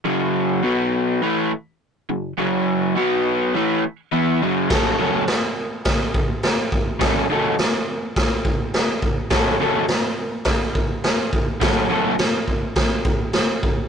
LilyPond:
<<
  \new Staff \with { instrumentName = "Overdriven electric guitar" } { \clef bass \time 4/4 \key fis \minor \tempo 4 = 104 <fis, cis fis>4 <b, fis b>4 <a, e a>8 r4 <fis, cis>8 | <fis, cis fis>4 <b, fis b>4 <a, e a>8 r8 <e b e'>8 <fis, cis fis>8 | <fis, cis fis a cis' a'>8 <fis, cis fis a cis' a'>8 r2. | <fis, cis fis a cis' a'>8 <fis, cis fis a cis' a'>8 r2. |
<fis, cis fis a cis' a'>8 <fis, cis fis a cis' a'>8 r2. | <fis, cis fis a cis' a'>8 <fis, cis fis a cis' a'>8 r2. | }
  \new DrumStaff \with { instrumentName = "Drums" } \drummode { \time 4/4 r4 r4 r4 r4 | r4 r4 r4 r4 | <cymc bd sn>4 <hho sn>4 <hho bd sn>8 bd8 <hho sn>8 bd8 | <hho bd sn>4 <hho sn>4 <hho bd sn>8 bd8 <hho sn>8 bd8 |
<hho bd sn>4 <hho sn>4 <hho bd sn>8 bd8 <hho sn>8 bd8 | <hho bd sn>4 <hho sn>8 bd8 <hho bd sn>8 bd8 <hho sn>8 bd8 | }
>>